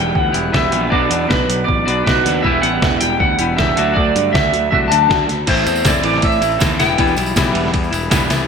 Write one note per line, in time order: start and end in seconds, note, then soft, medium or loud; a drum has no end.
0.00 0.11 E1 medium
0.00 0.71 E2 medium
0.00 0.71 B2 medium
0.00 0.32 E3 medium
0.00 0.71 E3 medium
0.00 0.72 G3 loud
0.00 0.34 B3 medium
0.00 0.72 B3 medium
0.00 0.32 E4 medium
0.00 0.31 G4 medium
0.00 0.70 G4 medium
0.00 0.15 G5 medium
0.15 0.31 D2 loud
0.15 0.53 F#5 medium
0.15 kick loud
0.32 0.49 E1 medium
0.32 0.51 E3 medium
0.32 0.52 B3 medium
0.32 0.52 E4 medium
0.32 0.51 G4 medium
0.32 closed hi-hat medium
0.52 0.69 E1 medium
0.52 0.90 E3 medium
0.52 0.91 B3 medium
0.52 0.90 E4 medium
0.52 0.91 G4 medium
0.52 0.93 E5 medium
0.52 kick loud
0.52 snare medium
0.71 0.88 A#1 medium
0.71 0.92 E2 medium
0.71 0.89 B2 medium
0.71 0.91 E3 medium
0.71 0.91 G3 medium
0.71 0.92 B3 medium
0.71 0.90 G4 medium
0.71 closed hi-hat loud
0.90 1.07 B1 medium
0.90 1.85 B2 medium
0.90 2.23 B2 medium
0.90 1.88 F#3 medium
0.90 2.26 F#3 medium
0.90 1.85 B3 medium
0.90 2.24 B3 medium
0.90 1.85 D4 medium
0.90 2.24 D4 loud
0.90 1.85 F#4 medium
0.90 2.23 F#4 medium
0.90 1.26 D5 medium
0.90 kick loud
1.10 1.25 E2 medium
1.10 closed hi-hat medium
1.29 1.45 B1 medium
1.29 1.64 B4 medium
1.29 kick loud
1.29 snare loud
1.49 1.64 B1 medium
1.49 closed hi-hat medium
1.64 1.84 D5 medium
1.68 1.83 A1 medium
1.68 kick loud
1.85 2.02 B1 medium
1.85 2.05 B2 medium
1.85 2.06 F#3 medium
1.85 2.05 B3 medium
1.85 2.05 D4 medium
1.85 2.08 F#4 medium
1.85 2.04 D5 medium
1.85 closed hi-hat medium
2.04 2.21 B1 medium
2.04 2.43 B2 medium
2.04 2.43 F#3 medium
2.04 2.43 B3 medium
2.04 2.44 D4 medium
2.04 2.40 B4 medium
2.04 kick loud
2.04 snare loud
2.08 2.46 F#4 medium
2.24 2.40 D#2 medium
2.24 2.42 B2 medium
2.24 2.43 F#3 medium
2.24 2.43 B3 medium
2.24 2.43 D4 medium
2.24 2.45 F#4 loud
2.24 snare soft
2.24 closed hi-hat loud
2.42 2.59 E1 loud
2.42 3.75 E2 medium
2.42 3.75 B2 medium
2.42 3.41 E3 medium
2.42 3.75 E3 medium
2.42 3.76 G3 medium
2.42 3.38 B3 loud
2.42 3.76 B3 loud
2.42 3.39 E4 medium
2.42 3.77 G4 loud
2.42 3.37 G4 loud
2.42 2.61 E5 loud
2.42 kick loud
2.62 2.78 A1 medium
2.62 3.00 F#5 loud
2.62 closed hi-hat medium
2.82 2.97 E1 medium
2.82 kick loud
2.82 snare loud
3.00 3.17 E1 medium
3.00 3.19 G5 medium
3.00 closed hi-hat loud
3.20 3.35 D2 loud
3.20 3.55 F#5 loud
3.20 kick loud
3.39 3.54 E1 medium
3.39 3.57 E3 medium
3.39 3.57 B3 medium
3.39 3.59 E4 medium
3.39 3.57 G4 medium
3.39 closed hi-hat medium
3.57 3.73 E1 medium
3.57 3.76 E3 medium
3.57 3.76 B3 medium
3.57 3.78 E4 medium
3.57 3.77 G4 medium
3.57 3.92 E5 medium
3.57 kick loud
3.57 snare loud
3.76 3.92 D2 loud
3.76 5.07 D3 medium
3.76 4.70 D3 medium
3.76 4.70 F#3 loud
3.76 5.08 A3 loud
3.76 4.71 A3 loud
3.76 4.71 D4 medium
3.76 5.09 D4 loud
3.76 4.71 F#4 loud
3.76 closed hi-hat loud
3.80 5.10 F#4 loud
3.93 4.11 D2 loud
3.93 4.30 D5 loud
3.93 kick loud
4.16 4.30 G2 medium
4.16 closed hi-hat medium
4.33 4.49 D2 medium
4.33 4.68 E5 loud
4.33 kick loud
4.33 snare loud
4.53 4.68 D2 medium
4.53 closed hi-hat medium
4.71 4.87 C2 medium
4.71 4.89 D3 medium
4.71 4.90 F#3 medium
4.71 4.90 A3 medium
4.71 4.90 D4 medium
4.71 4.89 F#4 medium
4.71 4.76 E5 loud
4.71 kick loud
4.88 5.06 D2 medium
4.88 5.28 F#3 medium
4.88 5.27 A3 medium
4.88 5.27 D4 medium
4.88 5.27 F#4 medium
4.88 5.24 A5 loud
4.88 closed hi-hat medium
4.93 5.28 D3 medium
5.08 5.25 D2 medium
5.08 5.26 D3 medium
5.08 5.27 A3 medium
5.08 5.28 D4 medium
5.08 5.28 F#4 medium
5.08 kick loud
5.08 snare loud
5.28 5.43 D2 medium
5.28 snare soft
5.28 closed hi-hat loud
5.46 5.63 A1 loud
5.46 5.83 A2 medium
5.46 5.65 E3 medium
5.46 5.85 E3 medium
5.46 5.65 A3 medium
5.46 5.67 A3 medium
5.46 5.65 C4 loud
5.46 5.66 C4 loud
5.46 5.65 E4 medium
5.46 5.65 E4 loud
5.46 5.83 C5 medium
5.46 kick loud
5.46 crash loud
5.46 ride loud
5.57 tambourine soft
5.66 5.82 E2 medium
5.66 5.84 A3 medium
5.66 5.85 C4 medium
5.66 5.87 E4 medium
5.66 muted overdriven electric guitar stroke medium
5.66 ride medium
5.66 tambourine medium
5.75 tambourine medium
5.84 6.00 E1 medium
5.84 6.60 A2 loud
5.84 6.58 E3 loud
5.84 6.42 A3 loud
5.84 6.41 C4 loud
5.84 6.40 E4 loud
5.84 6.04 D5 medium
5.84 muted overdriven electric guitar stroke medium
5.84 kick loud
5.84 snare loud
5.84 ride loud
5.84 tambourine loud
6.03 6.19 A1 medium
6.03 6.21 E3 medium
6.03 6.21 A3 medium
6.03 6.21 C4 medium
6.03 6.22 E4 loud
6.03 6.24 D5 medium
6.03 ride medium
6.13 snare soft
6.22 6.38 A2 loud
6.22 6.59 E5 loud
6.22 muted overdriven electric guitar stroke soft
6.22 kick loud
6.22 ride loud
6.32 tambourine soft
6.41 6.57 A1 medium
6.41 6.59 A3 medium
6.41 6.60 C4 medium
6.41 6.61 E4 medium
6.41 muted overdriven electric guitar stroke soft
6.41 ride medium
6.41 tambourine medium
6.52 tambourine soft
6.59 6.76 D#2 loud
6.59 6.79 E3 loud
6.59 6.78 E3 medium
6.59 6.79 A3 loud
6.59 6.78 A3 medium
6.59 6.79 C4 loud
6.59 6.79 C4 medium
6.59 6.78 E4 loud
6.59 6.78 E4 medium
6.59 kick loud
6.59 snare loud
6.59 ride loud
6.59 tambourine medium
6.79 6.95 E1 loud
6.79 6.97 E3 medium
6.79 6.98 G3 medium
6.79 6.99 B3 medium
6.79 6.99 E4 medium
6.79 7.51 G5 loud
6.79 muted overdriven electric guitar stroke medium
6.79 snare medium
6.79 ride medium
6.79 tambourine medium
6.98 7.14 E1 loud
6.98 7.16 E3 loud
6.98 7.35 E3 loud
6.98 7.16 G3 loud
6.98 7.18 G3 medium
6.98 7.15 B3 loud
6.98 7.17 B3 loud
6.98 7.15 E4 loud
6.98 7.16 E4 loud
6.98 kick loud
6.98 ride loud
7.07 tambourine soft
7.16 7.33 B1 loud
7.16 7.36 G3 medium
7.16 7.36 B3 medium
7.16 7.37 E4 medium
7.16 muted overdriven electric guitar stroke medium
7.16 ride medium
7.16 tambourine medium
7.26 tambourine medium
7.35 7.51 B1 medium
7.35 8.09 E3 loud
7.35 7.92 G3 loud
7.35 7.91 B3 loud
7.35 7.90 E4 loud
7.35 muted overdriven electric guitar stroke medium
7.35 kick loud
7.35 snare loud
7.35 ride loud
7.35 tambourine medium
7.53 7.70 E1 medium
7.53 7.71 E3 medium
7.53 7.71 G3 medium
7.53 7.72 B3 medium
7.53 7.72 E4 medium
7.53 ride medium
7.65 snare soft
7.72 7.89 E2 medium
7.72 muted overdriven electric guitar stroke soft
7.72 kick loud
7.72 ride medium
7.84 tambourine soft
7.91 8.07 E1 loud
7.91 8.10 G3 medium
7.91 8.11 B3 medium
7.91 8.11 E4 medium
7.91 muted overdriven electric guitar stroke medium
7.91 ride medium
7.91 tambourine medium
8.10 8.27 E1 medium
8.10 8.47 E3 medium
8.10 8.30 E3 medium
8.10 8.31 G3 medium
8.10 8.29 G3 loud
8.10 8.29 B3 loud
8.10 8.29 B3 medium
8.10 8.28 E4 loud
8.10 kick loud
8.10 snare loud
8.10 ride loud
8.10 tambourine medium
8.29 8.47 C2 loud
8.29 8.47 G3 medium
8.29 8.47 B3 medium
8.29 8.47 E4 medium
8.29 muted overdriven electric guitar stroke medium
8.29 snare medium
8.29 ride medium
8.29 tambourine medium